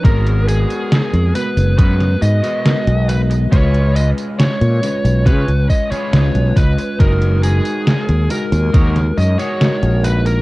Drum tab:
HH |xxxxxxxxxx-xxxxx|xxxxxxxxxx-xxxxx|xxxxxxxxxx-xxxxx|
TB |x-xxx-xxx-xxx-xx|x-xxx-xxx-xxx-xx|x-xxx-xxx-xxx-xx|
SD |----o----o--o---|----o-------o---|----o----o--o---|
BD |o-------o-------|o-------o-o---o-|o-------o-------|